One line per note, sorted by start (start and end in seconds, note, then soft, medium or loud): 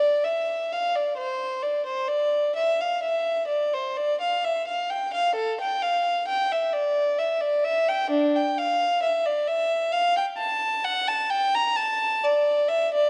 0.00 0.21 D5 medium
0.24 0.71 E5 medium
0.72 0.95 F5 medium
0.95 1.18 D5 medium
1.18 1.62 C5 medium
1.63 1.86 D5 medium
1.86 2.09 C5 medium
2.08 2.55 D5 medium
2.56 2.78 E5 medium
2.81 3.03 F5 medium
3.03 3.48 E5 medium
3.48 3.71 D5 medium
3.74 3.96 C5 medium
3.97 4.19 D5 medium
4.21 4.42 F5 medium
4.44 4.66 E5 medium
4.68 4.89 F5 medium
4.90 5.12 G5 medium
5.14 5.35 F5 medium
5.35 5.57 A4 medium
5.61 5.82 G5 medium
5.82 6.27 F5 medium
6.28 6.49 G5 medium
6.52 6.73 E5 medium
6.73 7.17 D5 medium
7.18 7.40 E5 medium
7.41 7.64 D5 medium
7.65 7.88 E5 medium
7.89 8.12 G5 medium
8.11 8.35 D4 medium
8.36 8.59 G5 medium
8.58 9.04 F5 medium
9.03 9.26 E5 medium
9.26 9.49 D5 medium
9.48 9.94 E5 medium
9.92 10.16 F5 medium
10.17 10.25 G5 medium
10.38 10.84 A5 medium
10.84 11.08 F#5 medium
11.08 11.31 A5 medium
11.30 11.54 G5 medium
11.55 11.78 A#5 medium
11.76 12.23 A5 medium
12.24 12.71 D5 medium
12.69 12.93 E5 medium
12.94 13.10 D5 medium